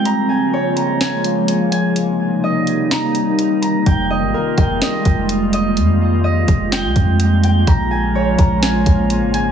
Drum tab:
HH |x--xxxxx|x--xxxxx|x--xxxxx|x--xxxxx|
SD |----o---|----o---|----o---|----o---|
BD |--------|--------|o--o-o--|---o-o--|

HH |x--xxxxx|
SD |----o---|
BD |o--o-o--|